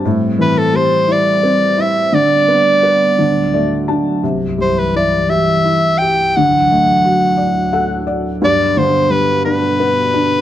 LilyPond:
<<
  \new Staff \with { instrumentName = "Soprano saxophone" } { \time 6/8 \key g \major \tempo 4. = 58 r8 b'16 a'16 c''8 d''4 e''8 | d''2~ d''8 r8 | r8 c''16 b'16 d''8 e''4 g''8 | fis''2~ fis''8 r8 |
d''8 c''8 b'8 b'4. | }
  \new Staff \with { instrumentName = "Felt piano" } { \time 6/8 \key g \major a,8 e8 g8 e'8 c'8 e'8 | d8 b8 b'8 d8 <a d''>8 <d' a''>8 | c8 g8 e'8 g'8 e'8 g'8 | d8 a8 fis'8 d''8 <a' fis''>8 d''8 |
g,8 d8 g8 d'8 b8 d'8 | }
  \new Staff \with { instrumentName = "Ambient pad" } { \clef bass \time 6/8 \key g \major << { <a, c'>2. | <d b>4. <d, fis>4. | <c, e>2. | <d, fis>2. |
<g, b,>2. | } \\ { g2.~ | g4. a,4. | g,2. | a,2. |
d2. | } >> }
>>